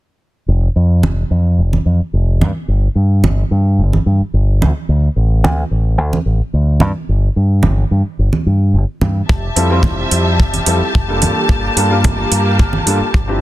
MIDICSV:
0, 0, Header, 1, 6, 480
1, 0, Start_track
1, 0, Tempo, 550459
1, 421, Time_signature, 4, 2, 24, 8
1, 11694, End_track
2, 0, Start_track
2, 0, Title_t, "String section"
2, 0, Program_c, 0, 48
2, 8099, Note_on_c, 0, 67, 72
2, 8099, Note_on_c, 0, 81, 83
2, 8100, Note_on_c, 0, 76, 69
2, 9764, Note_off_c, 0, 76, 0
2, 9781, Note_on_c, 0, 58, 68
2, 11665, Note_off_c, 0, 67, 0
2, 11665, Note_off_c, 0, 81, 0
2, 11682, Note_off_c, 0, 58, 0
2, 11694, End_track
3, 0, Start_track
3, 0, Title_t, "Grand piano"
3, 0, Program_c, 1, 0
3, 8334, Note_on_c, 1, 55, 66
3, 8335, Note_on_c, 1, 60, 60
3, 8338, Note_on_c, 1, 64, 63
3, 8341, Note_on_c, 1, 65, 60
3, 8344, Note_on_c, 1, 69, 72
3, 8434, Note_off_c, 1, 55, 0
3, 8434, Note_off_c, 1, 60, 0
3, 8436, Note_off_c, 1, 64, 0
3, 8437, Note_off_c, 1, 65, 0
3, 8439, Note_off_c, 1, 69, 0
3, 8460, Note_on_c, 1, 55, 79
3, 8465, Note_on_c, 1, 60, 69
3, 8468, Note_on_c, 1, 64, 71
3, 8475, Note_on_c, 1, 65, 72
3, 8476, Note_on_c, 1, 72, 86
3, 9270, Note_off_c, 1, 55, 0
3, 9272, Note_off_c, 1, 60, 0
3, 9274, Note_off_c, 1, 64, 0
3, 9278, Note_off_c, 1, 65, 0
3, 9278, Note_off_c, 1, 72, 0
3, 9296, Note_on_c, 1, 55, 68
3, 9298, Note_on_c, 1, 60, 59
3, 9303, Note_on_c, 1, 64, 60
3, 9304, Note_on_c, 1, 65, 60
3, 9307, Note_on_c, 1, 69, 74
3, 9383, Note_off_c, 1, 55, 0
3, 9384, Note_off_c, 1, 60, 0
3, 9386, Note_off_c, 1, 64, 0
3, 9387, Note_off_c, 1, 65, 0
3, 9388, Note_off_c, 1, 69, 0
3, 9656, Note_on_c, 1, 55, 70
3, 9663, Note_on_c, 1, 58, 65
3, 9665, Note_on_c, 1, 62, 64
3, 9670, Note_on_c, 1, 65, 63
3, 9674, Note_on_c, 1, 69, 76
3, 10228, Note_off_c, 1, 55, 0
3, 10232, Note_off_c, 1, 58, 0
3, 10233, Note_off_c, 1, 62, 0
3, 10235, Note_off_c, 1, 65, 0
3, 10237, Note_off_c, 1, 69, 0
3, 10255, Note_on_c, 1, 55, 69
3, 10258, Note_on_c, 1, 58, 66
3, 10260, Note_on_c, 1, 62, 60
3, 10262, Note_on_c, 1, 65, 65
3, 10264, Note_on_c, 1, 69, 74
3, 10354, Note_off_c, 1, 55, 0
3, 10356, Note_off_c, 1, 58, 0
3, 10357, Note_off_c, 1, 62, 0
3, 10358, Note_off_c, 1, 65, 0
3, 10359, Note_off_c, 1, 69, 0
3, 10375, Note_on_c, 1, 55, 78
3, 10381, Note_on_c, 1, 58, 72
3, 10384, Note_on_c, 1, 62, 70
3, 10388, Note_on_c, 1, 65, 74
3, 10393, Note_on_c, 1, 70, 88
3, 11188, Note_off_c, 1, 55, 0
3, 11191, Note_off_c, 1, 58, 0
3, 11192, Note_off_c, 1, 62, 0
3, 11194, Note_off_c, 1, 65, 0
3, 11197, Note_off_c, 1, 70, 0
3, 11214, Note_on_c, 1, 55, 64
3, 11217, Note_on_c, 1, 58, 64
3, 11220, Note_on_c, 1, 62, 63
3, 11223, Note_on_c, 1, 65, 62
3, 11223, Note_on_c, 1, 69, 75
3, 11302, Note_off_c, 1, 55, 0
3, 11303, Note_off_c, 1, 58, 0
3, 11305, Note_off_c, 1, 62, 0
3, 11306, Note_off_c, 1, 65, 0
3, 11306, Note_off_c, 1, 69, 0
3, 11575, Note_on_c, 1, 53, 71
3, 11580, Note_on_c, 1, 60, 67
3, 11583, Note_on_c, 1, 62, 67
3, 11587, Note_on_c, 1, 64, 64
3, 11592, Note_on_c, 1, 67, 77
3, 11694, Note_off_c, 1, 53, 0
3, 11694, Note_off_c, 1, 60, 0
3, 11694, Note_off_c, 1, 62, 0
3, 11694, Note_off_c, 1, 64, 0
3, 11694, Note_off_c, 1, 67, 0
3, 11694, End_track
4, 0, Start_track
4, 0, Title_t, "Fingered electric bass"
4, 0, Program_c, 2, 33
4, 420, Note_on_c, 2, 29, 88
4, 586, Note_off_c, 2, 29, 0
4, 660, Note_on_c, 2, 41, 93
4, 897, Note_on_c, 2, 29, 74
4, 910, Note_off_c, 2, 41, 0
4, 1065, Note_off_c, 2, 29, 0
4, 1139, Note_on_c, 2, 41, 85
4, 1380, Note_on_c, 2, 29, 75
4, 1393, Note_off_c, 2, 41, 0
4, 1546, Note_off_c, 2, 29, 0
4, 1618, Note_on_c, 2, 41, 80
4, 1739, Note_off_c, 2, 41, 0
4, 1860, Note_on_c, 2, 29, 83
4, 2099, Note_on_c, 2, 43, 83
4, 2112, Note_off_c, 2, 29, 0
4, 2185, Note_off_c, 2, 43, 0
4, 2336, Note_on_c, 2, 31, 84
4, 2504, Note_off_c, 2, 31, 0
4, 2575, Note_on_c, 2, 43, 89
4, 2816, Note_on_c, 2, 31, 77
4, 2829, Note_off_c, 2, 43, 0
4, 2984, Note_off_c, 2, 31, 0
4, 3060, Note_on_c, 2, 43, 93
4, 3301, Note_on_c, 2, 31, 75
4, 3314, Note_off_c, 2, 43, 0
4, 3466, Note_off_c, 2, 31, 0
4, 3540, Note_on_c, 2, 43, 79
4, 3665, Note_off_c, 2, 43, 0
4, 3780, Note_on_c, 2, 31, 80
4, 4021, Note_on_c, 2, 38, 84
4, 4034, Note_off_c, 2, 31, 0
4, 4106, Note_off_c, 2, 38, 0
4, 4261, Note_on_c, 2, 38, 86
4, 4426, Note_off_c, 2, 38, 0
4, 4501, Note_on_c, 2, 33, 90
4, 4742, Note_off_c, 2, 33, 0
4, 4742, Note_on_c, 2, 38, 77
4, 4907, Note_off_c, 2, 38, 0
4, 4979, Note_on_c, 2, 33, 92
4, 5215, Note_off_c, 2, 33, 0
4, 5215, Note_on_c, 2, 38, 76
4, 5383, Note_off_c, 2, 38, 0
4, 5456, Note_on_c, 2, 33, 78
4, 5579, Note_off_c, 2, 33, 0
4, 5698, Note_on_c, 2, 38, 83
4, 5939, Note_off_c, 2, 38, 0
4, 5939, Note_on_c, 2, 43, 84
4, 6025, Note_off_c, 2, 43, 0
4, 6181, Note_on_c, 2, 31, 86
4, 6346, Note_off_c, 2, 31, 0
4, 6419, Note_on_c, 2, 43, 93
4, 6660, Note_on_c, 2, 31, 74
4, 6673, Note_off_c, 2, 43, 0
4, 6826, Note_off_c, 2, 31, 0
4, 6898, Note_on_c, 2, 43, 88
4, 6985, Note_off_c, 2, 43, 0
4, 7140, Note_on_c, 2, 31, 68
4, 7226, Note_off_c, 2, 31, 0
4, 7379, Note_on_c, 2, 43, 76
4, 7617, Note_on_c, 2, 31, 69
4, 7630, Note_off_c, 2, 43, 0
4, 7704, Note_off_c, 2, 31, 0
4, 7858, Note_on_c, 2, 43, 86
4, 8025, Note_off_c, 2, 43, 0
4, 8104, Note_on_c, 2, 29, 89
4, 8268, Note_off_c, 2, 29, 0
4, 8336, Note_on_c, 2, 41, 92
4, 8570, Note_on_c, 2, 29, 76
4, 8583, Note_off_c, 2, 41, 0
4, 8741, Note_off_c, 2, 29, 0
4, 8818, Note_on_c, 2, 41, 88
4, 9064, Note_on_c, 2, 29, 76
4, 9077, Note_off_c, 2, 41, 0
4, 9228, Note_off_c, 2, 29, 0
4, 9298, Note_on_c, 2, 41, 82
4, 9420, Note_off_c, 2, 41, 0
4, 9547, Note_on_c, 2, 29, 86
4, 9778, Note_on_c, 2, 43, 85
4, 9791, Note_off_c, 2, 29, 0
4, 9865, Note_off_c, 2, 43, 0
4, 10020, Note_on_c, 2, 31, 91
4, 10186, Note_off_c, 2, 31, 0
4, 10258, Note_on_c, 2, 43, 93
4, 10503, Note_on_c, 2, 31, 80
4, 10516, Note_off_c, 2, 43, 0
4, 10667, Note_off_c, 2, 31, 0
4, 10737, Note_on_c, 2, 43, 93
4, 10983, Note_on_c, 2, 31, 76
4, 10996, Note_off_c, 2, 43, 0
4, 11148, Note_off_c, 2, 31, 0
4, 11215, Note_on_c, 2, 43, 80
4, 11337, Note_off_c, 2, 43, 0
4, 11459, Note_on_c, 2, 31, 84
4, 11694, Note_off_c, 2, 31, 0
4, 11694, End_track
5, 0, Start_track
5, 0, Title_t, "Muted fingered electric bass strokes"
5, 1744, Note_on_c, 9, 29, 37
5, 1831, Note_off_c, 9, 29, 0
5, 3670, Note_on_c, 9, 29, 36
5, 3757, Note_off_c, 9, 29, 0
5, 5584, Note_on_c, 9, 29, 36
5, 5672, Note_off_c, 9, 29, 0
5, 9425, Note_on_c, 9, 29, 37
5, 9512, Note_off_c, 9, 29, 0
5, 11343, Note_on_c, 9, 29, 41
5, 11430, Note_off_c, 9, 29, 0
5, 11694, End_track
6, 0, Start_track
6, 0, Title_t, "Drums"
6, 901, Note_on_c, 9, 63, 88
6, 988, Note_off_c, 9, 63, 0
6, 1509, Note_on_c, 9, 63, 55
6, 1596, Note_off_c, 9, 63, 0
6, 2105, Note_on_c, 9, 63, 82
6, 2192, Note_off_c, 9, 63, 0
6, 2823, Note_on_c, 9, 63, 83
6, 2910, Note_off_c, 9, 63, 0
6, 3429, Note_on_c, 9, 63, 59
6, 3516, Note_off_c, 9, 63, 0
6, 4029, Note_on_c, 9, 63, 84
6, 4116, Note_off_c, 9, 63, 0
6, 4748, Note_on_c, 9, 63, 81
6, 4836, Note_off_c, 9, 63, 0
6, 5345, Note_on_c, 9, 63, 61
6, 5432, Note_off_c, 9, 63, 0
6, 5930, Note_on_c, 9, 63, 82
6, 6018, Note_off_c, 9, 63, 0
6, 6651, Note_on_c, 9, 63, 83
6, 6738, Note_off_c, 9, 63, 0
6, 7261, Note_on_c, 9, 63, 55
6, 7348, Note_off_c, 9, 63, 0
6, 7861, Note_on_c, 9, 63, 81
6, 7948, Note_off_c, 9, 63, 0
6, 8104, Note_on_c, 9, 36, 100
6, 8192, Note_off_c, 9, 36, 0
6, 8340, Note_on_c, 9, 46, 88
6, 8428, Note_off_c, 9, 46, 0
6, 8571, Note_on_c, 9, 36, 120
6, 8580, Note_on_c, 9, 63, 83
6, 8582, Note_on_c, 9, 64, 65
6, 8658, Note_off_c, 9, 36, 0
6, 8667, Note_off_c, 9, 63, 0
6, 8670, Note_off_c, 9, 64, 0
6, 8820, Note_on_c, 9, 46, 95
6, 8907, Note_off_c, 9, 46, 0
6, 9065, Note_on_c, 9, 36, 96
6, 9153, Note_off_c, 9, 36, 0
6, 9187, Note_on_c, 9, 46, 52
6, 9191, Note_on_c, 9, 63, 54
6, 9275, Note_off_c, 9, 46, 0
6, 9278, Note_off_c, 9, 63, 0
6, 9299, Note_on_c, 9, 46, 97
6, 9386, Note_off_c, 9, 46, 0
6, 9548, Note_on_c, 9, 36, 103
6, 9635, Note_off_c, 9, 36, 0
6, 9782, Note_on_c, 9, 46, 100
6, 9785, Note_on_c, 9, 63, 87
6, 9869, Note_off_c, 9, 46, 0
6, 9872, Note_off_c, 9, 63, 0
6, 10021, Note_on_c, 9, 36, 94
6, 10108, Note_off_c, 9, 36, 0
6, 10262, Note_on_c, 9, 46, 89
6, 10350, Note_off_c, 9, 46, 0
6, 10499, Note_on_c, 9, 64, 67
6, 10502, Note_on_c, 9, 46, 53
6, 10504, Note_on_c, 9, 36, 99
6, 10506, Note_on_c, 9, 63, 86
6, 10587, Note_off_c, 9, 64, 0
6, 10589, Note_off_c, 9, 46, 0
6, 10591, Note_off_c, 9, 36, 0
6, 10593, Note_off_c, 9, 63, 0
6, 10740, Note_on_c, 9, 46, 95
6, 10827, Note_off_c, 9, 46, 0
6, 10982, Note_on_c, 9, 36, 100
6, 11069, Note_off_c, 9, 36, 0
6, 11099, Note_on_c, 9, 63, 64
6, 11187, Note_off_c, 9, 63, 0
6, 11221, Note_on_c, 9, 46, 89
6, 11308, Note_off_c, 9, 46, 0
6, 11460, Note_on_c, 9, 36, 94
6, 11547, Note_off_c, 9, 36, 0
6, 11694, End_track
0, 0, End_of_file